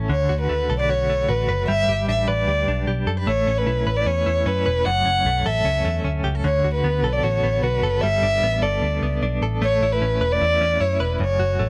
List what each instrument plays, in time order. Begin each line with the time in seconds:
Already playing: clean electric guitar C#4 E4 A4
0.09 picked electric bass D2, clean electric guitar D3, violin C#5
0.29 picked electric bass D2, clean electric guitar F#4
0.41 violin B4
0.49 picked electric bass D2, clean electric guitar A3
0.70 picked electric bass B1, clean electric guitar A4
0.79 clean electric guitar B4, violin D5
0.89 clean electric guitar F#4, violin C#5
1.10 clean electric guitar A3
1.28 picked electric bass A1, clean electric guitar F#4, violin B4
1.49 picked electric bass F#1, clean electric guitar B4
1.68 picked electric bass G1, clean electric guitar G3, violin E5
1.88 picked electric bass G1, clean electric guitar G4
2.08 picked electric bass A1, clean electric guitar D4, violin E5
2.27 picked electric bass A1, clean electric guitar B4, violin D5
2.47 picked electric bass D2, clean electric guitar G4
2.67 picked electric bass B1, clean electric guitar D4
2.87 picked electric bass B1, clean electric guitar G4
3.07 picked electric bass F#2, clean electric guitar A4
3.17 clean electric guitar B4
3.27 picked electric bass A1, clean electric guitar A3, violin C#5
3.46 picked electric bass A1, clean electric guitar C#4
3.58 violin B4
3.66 picked electric bass B1, clean electric guitar E4
3.86 picked electric bass A1, clean electric guitar B4
3.96 violin D5
4.06 picked electric bass E2, clean electric guitar C#4, violin C#5
4.26 picked electric bass E2, clean electric guitar E4
4.46 picked electric bass F#2, clean electric guitar C#4, violin B4
4.66 picked electric bass E1, clean electric guitar B4
4.85 picked electric bass F#1, clean electric guitar F#2, violin F#5
5.06 picked electric bass F#1, clean electric guitar C#4
5.25 picked electric bass B1, clean electric guitar A3
5.45 picked electric bass A1, clean electric guitar A4, violin E5
5.64 picked electric bass C#2, clean electric guitar C#4
5.85 picked electric bass E2, clean electric guitar A3
6.04 picked electric bass D2, clean electric guitar C#4
6.24 picked electric bass C#2, clean electric guitar G4
6.35 clean electric guitar A4
6.44 picked electric bass D2, clean electric guitar D3, violin C#5
6.64 picked electric bass D2, clean electric guitar F#4
6.74 violin B4
6.84 picked electric bass D2, clean electric guitar B3
7.03 picked electric bass B1, clean electric guitar A4
7.12 violin D5
7.23 picked electric bass A1, clean electric guitar F#4, violin C#5
7.43 picked electric bass A1, clean electric guitar B3
7.62 picked electric bass B1, clean electric guitar F#4, violin B4
7.82 picked electric bass F#1, clean electric guitar A4
8.01 picked electric bass G1, clean electric guitar G3, violin E5
8.22 picked electric bass G1, clean electric guitar D4
8.42 picked electric bass A1, clean electric guitar B3
8.62 picked electric bass G1, clean electric guitar A4, violin D5
8.82 picked electric bass D2, clean electric guitar D4
9.01 picked electric bass C#2, clean electric guitar B3
9.22 picked electric bass B1, clean electric guitar D4
9.41 picked electric bass A1, clean electric guitar A4
9.61 picked electric bass A1, clean electric guitar A3, violin C#5
9.81 picked electric bass A1, clean electric guitar E4
9.92 violin B4
10.01 picked electric bass A1, clean electric guitar C#4
10.21 picked electric bass E1, clean electric guitar B4
10.32 violin D5
10.41 picked electric bass E2, clean electric guitar E4
10.60 picked electric bass E2, clean electric guitar C#4
10.80 picked electric bass F#2, clean electric guitar E4, violin C#5
11.00 picked electric bass E1, clean electric guitar B4, violin B4
11.20 picked electric bass F#1, clean electric guitar F#2, violin C#5
11.39 picked electric bass F#1, clean electric guitar F#4
11.59 picked electric bass A1, clean electric guitar A3